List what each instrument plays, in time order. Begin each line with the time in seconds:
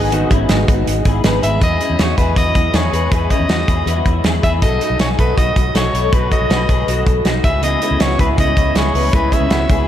Already playing: fingered electric bass G#1, steel-string acoustic guitar G#3 B3 D#4 G#4, clean electric guitar D#4 G#4, synth keys G#4 B4 D#5
0.12 steel-string acoustic guitar G#2 D#3 G#3 B3 D#4 G#4, clean electric guitar D#4 F#4, closed hi-hat
0.30 fingered electric bass G#1, steel-string acoustic guitar G#3 B3 D#4 G#4, clean electric guitar C#4 E4, kick, closed hi-hat
0.49 fingered electric bass G#1, steel-string acoustic guitar G#2 D#3 G#3 B3 D#4 G#4, clean electric guitar D#4 F#4, snare, closed hi-hat
0.68 fingered electric bass G#1, steel-string acoustic guitar G#3 B3 D#4 G#4, kick, closed hi-hat
0.86 fingered electric bass G#1, steel-string acoustic guitar G#3 B3 D#4 G#4, closed hi-hat
1.05 fingered electric bass G#1, steel-string acoustic guitar G#3 B3 D#4 G#4, clean electric guitar E4 G#4, kick, closed hi-hat
1.24 fingered electric bass G#1, steel-string acoustic guitar G#2 D#3 G#3 B3 D#4 G#4, clean electric guitar G#4 B4, snare, closed hi-hat
1.42 fingered electric bass G#1, steel-string acoustic guitar G#3 B3 D#4 G#4, soprano saxophone E5, closed hi-hat
1.61 fingered electric bass E2, clean electric guitar E4 G#4, soprano saxophone D#5, kick, closed hi-hat
1.81 clean electric guitar C#4 E4, closed hi-hat
1.90 fingered electric bass E2
1.99 fingered electric bass E2, clean electric guitar D#4 F#4, soprano saxophone C#5, snare, closed hi-hat
2.17 fingered electric bass E2, clean electric guitar E4 G#4, soprano saxophone B4, kick, closed hi-hat
2.36 fingered electric bass E2, clean electric guitar B3 E4, soprano saxophone D#5, kick, closed hi-hat
2.55 fingered electric bass E2, kick, closed hi-hat
2.73 fingered electric bass E2, clean electric guitar E4 G#4, soprano saxophone C#5, snare, closed hi-hat
2.93 fingered electric bass E2, clean electric guitar G#4 B4, closed hi-hat
3.12 fingered electric bass E2, clean electric guitar E4 G#4, soprano saxophone B4, kick, closed hi-hat
3.30 clean electric guitar C#4 E4, soprano saxophone D#5, kick, closed hi-hat
3.40 fingered electric bass E2
3.49 fingered electric bass E2, clean electric guitar D#4 F#4, snare, closed hi-hat
3.68 fingered electric bass E2, clean electric guitar E4 G#4, kick, closed hi-hat
3.86 fingered electric bass E2, clean electric guitar B3 E4, closed hi-hat
4.06 fingered electric bass E2, kick, closed hi-hat
4.24 fingered electric bass E2, clean electric guitar E4 G#4, snare, closed hi-hat
4.43 fingered electric bass E2, clean electric guitar E4 G#4, soprano saxophone E5, kick, closed hi-hat
4.62 fingered electric bass B1, clean electric guitar F#4 A4, soprano saxophone D#5, kick, closed hi-hat
4.81 clean electric guitar D#4 F#4, closed hi-hat
4.90 fingered electric bass B1
4.99 fingered electric bass B1, clean electric guitar D#4 G#4, soprano saxophone C#5, snare, closed hi-hat
5.18 fingered electric bass B1, clean electric guitar F#4 A4, soprano saxophone B4, kick, closed hi-hat
5.37 fingered electric bass B1, clean electric guitar D#4 F#4, soprano saxophone D#5, kick, closed hi-hat
5.56 fingered electric bass B1, kick, closed hi-hat
5.75 fingered electric bass B1, clean electric guitar F#4 A4, soprano saxophone C#5, snare, closed hi-hat
5.93 fingered electric bass B1, clean electric guitar A4 C#5, closed hi-hat
6.12 fingered electric bass B1, clean electric guitar F#4 B4, soprano saxophone B4, kick, closed hi-hat
6.31 clean electric guitar F#4 A4, soprano saxophone D#5, kick, closed hi-hat
6.40 fingered electric bass B1
6.50 fingered electric bass B1, clean electric guitar F#4 B4, snare, closed hi-hat
6.69 fingered electric bass B1, clean electric guitar G#4 B4, kick, closed hi-hat
6.87 fingered electric bass B1, clean electric guitar F#4 A4, closed hi-hat
7.06 fingered electric bass B1, kick, closed hi-hat
7.25 fingered electric bass B1, clean electric guitar D#4 F#4, snare, closed hi-hat
7.44 fingered electric bass C#2, clean electric guitar E4 G#4, soprano saxophone E5, kick, closed hi-hat
7.62 steel-string acoustic guitar C#3 E3 G#3 B3 E4, clean electric guitar E4 G#4, soprano saxophone D#5, closed hi-hat
7.81 steel-string acoustic guitar G#3 B3 E4, clean electric guitar C#4 E4, closed hi-hat
7.91 fingered electric bass C#2
8.00 fingered electric bass C#2, steel-string acoustic guitar E3 G#3 B3 E4, clean electric guitar C#4 F#4, soprano saxophone C#5, snare, closed hi-hat
8.19 fingered electric bass C#2, steel-string acoustic guitar G#3 B3 E4, clean electric guitar E4 G#4, soprano saxophone B4, kick, closed hi-hat
8.37 fingered electric bass C#2, steel-string acoustic guitar C#3 E3 G#3 B3 E4, clean electric guitar C#4 E4, soprano saxophone D#5, kick, closed hi-hat
8.57 fingered electric bass C#2, steel-string acoustic guitar G#3 B3 E4, kick, closed hi-hat
8.74 fingered electric bass C#2, steel-string acoustic guitar E3 G#3 B3 E4, clean electric guitar E4 G#4, soprano saxophone C#5, snare, closed hi-hat
8.94 fingered electric bass C#2, steel-string acoustic guitar G#3 B3 E4, clean electric guitar G#4 B4, open hi-hat
9.12 fingered electric bass C#2, steel-string acoustic guitar C#3 E3 G#3 B3 E4, clean electric guitar E4 G#4, soprano saxophone B4, kick, closed hi-hat
9.31 steel-string acoustic guitar G#3 B3 E4, clean electric guitar C#4 E4, soprano saxophone E5, kick, closed hi-hat
9.41 fingered electric bass C#2
9.51 fingered electric bass C#2, steel-string acoustic guitar E3 G#3 B3 E4, clean electric guitar C#4 F#4, snare, closed hi-hat
9.69 fingered electric bass C#2, steel-string acoustic guitar G#3 B3 E4, clean electric guitar E4 G#4, kick, closed hi-hat